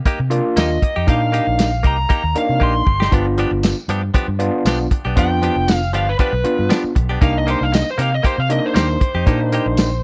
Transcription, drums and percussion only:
0.06 kick, closed hi-hat
0.31 closed hi-hat
0.57 snare, closed hi-hat, tambourine
0.82 kick, closed hi-hat
1.08 kick, closed hi-hat
1.34 closed hi-hat
1.59 snare, closed hi-hat, tambourine
1.84 kick, closed hi-hat
2.10 kick, closed hi-hat
2.36 closed hi-hat
2.61 kick
2.87 kick
3.02 snare
3.12 kick, closed hi-hat
3.38 closed hi-hat
3.63 snare, closed hi-hat, tambourine
3.89 closed hi-hat
4.14 kick, closed hi-hat
4.40 closed hi-hat
4.66 snare, closed hi-hat, tambourine
4.91 kick, closed hi-hat
5.17 kick, closed hi-hat
5.43 closed hi-hat
5.68 snare, closed hi-hat, tambourine
5.94 closed hi-hat
6.19 kick, closed hi-hat
6.45 closed hi-hat
6.70 snare, closed hi-hat, tambourine
6.96 kick, closed hi-hat
7.22 kick, closed hi-hat
7.48 closed hi-hat
7.74 snare, closed hi-hat, tambourine
7.99 closed hi-hat
8.24 kick, closed hi-hat
8.50 closed hi-hat
8.76 snare, closed hi-hat, tambourine
9.01 kick, closed hi-hat
9.27 kick, closed hi-hat
9.52 closed hi-hat
9.77 snare, closed hi-hat, tambourine

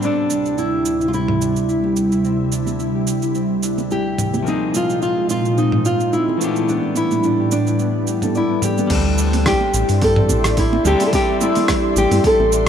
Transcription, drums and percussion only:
0.02 cabasa
0.30 muted conga, cabasa
0.46 cabasa
0.58 cabasa
0.85 cabasa
1.01 cabasa
1.13 cabasa
1.28 mid tom, muted conga
1.41 cabasa
1.56 cabasa
1.69 cabasa
1.84 muted conga, high conga
1.96 cabasa
2.12 cabasa
2.24 cabasa
2.52 cabasa
2.67 high conga, cabasa
2.80 cabasa
3.07 cabasa
3.22 cabasa
3.35 cabasa
3.63 cabasa
3.78 muted conga, cabasa
3.91 cabasa
4.18 mid tom, cabasa
4.34 high conga, cabasa
4.46 cabasa
4.74 muted conga, cabasa
4.90 cabasa
5.02 cabasa
5.29 cabasa
5.45 cabasa
5.58 cabasa
5.72 mid tom, muted conga
5.85 cabasa
6.00 cabasa
6.13 cabasa
6.28 muted conga, high conga
6.41 cabasa
6.56 cabasa
6.68 cabasa
6.95 muted conga, cabasa
7.11 high conga, cabasa
7.23 cabasa
7.51 muted conga, cabasa
7.67 cabasa
7.79 cabasa
8.07 cabasa
8.22 mid tom, muted conga, cabasa
8.35 cabasa
8.62 mid tom, cabasa
8.78 high conga, cabasa
8.90 kick, open hi-hat, crash, muted conga, cabasa
9.18 cabasa
9.33 open hi-hat, muted conga, cabasa
9.46 kick, cross-stick, open hi-hat, cabasa
9.61 muted conga
9.74 cabasa
9.89 open hi-hat, cabasa
10.02 kick, open hi-hat, muted conga, cabasa
10.16 mid tom
10.29 muted conga, cabasa
10.44 cross-stick, open hi-hat, cabasa
10.57 kick, open hi-hat, cabasa
10.73 muted conga, high conga
10.85 low conga, cabasa
11.00 open hi-hat, muted conga, cabasa
11.13 kick, open hi-hat, cabasa
11.41 muted conga, cabasa
11.55 open hi-hat, high conga, cabasa
11.68 kick, cross-stick, open hi-hat, muted conga, cabasa
11.96 cabasa
12.11 open hi-hat, muted conga, cabasa
12.24 kick, open hi-hat, cabasa
12.40 muted conga
12.52 cabasa

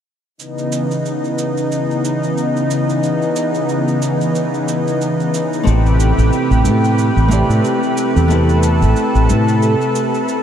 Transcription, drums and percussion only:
0.39 cabasa
0.58 cabasa
0.72 cabasa
0.91 cabasa
1.05 cabasa
1.24 cabasa
1.38 cabasa
1.57 cabasa
1.72 cabasa
1.91 cabasa
2.05 cabasa
2.23 cabasa
2.37 cabasa
2.57 cabasa
2.71 cabasa
2.89 cabasa
3.03 cabasa
3.22 cabasa
3.36 cabasa
3.54 cabasa
3.69 cabasa
3.88 cabasa
4.02 cabasa
4.21 cabasa
4.35 cabasa
4.54 cabasa
4.68 cabasa
4.87 cabasa
5.01 cabasa
5.20 cabasa
5.34 cabasa
5.53 cabasa
5.67 cabasa
5.86 cabasa
6.00 cabasa
6.19 cabasa
6.33 cabasa
6.51 cabasa
6.65 cabasa
6.84 cabasa
6.98 cabasa
7.17 cabasa
7.31 cabasa
7.50 cabasa
7.64 cabasa
7.83 cabasa
7.97 cabasa
8.16 cabasa
8.30 cabasa
8.49 cabasa
8.63 cabasa
8.82 cabasa
8.96 cabasa
9.15 cabasa
9.29 cabasa
9.48 cabasa
9.62 cabasa
9.81 cabasa
9.95 cabasa
10.14 cabasa
10.28 cabasa

